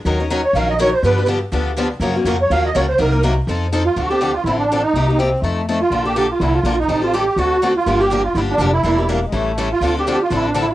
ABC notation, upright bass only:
X:1
M:4/4
L:1/8
Q:"Swing" 1/4=246
K:Ebdor
V:1 name="Upright bass" clef=bass
E,,4 B,,,4 | =G,,4 =D,,4 | G,,2 F,,2 E,,2 D,,2 | C,,4 F,,4 |
[K:Dm] D,,4 A,,,4 | C,,4 F,,4 | B,,,4 C,,2 B,,,2 | A,,,4 D,,4 |
G,,,4 G,,,2 F,,,2 | E,,,4 A,,,4 | D,,4 A,,,4 |]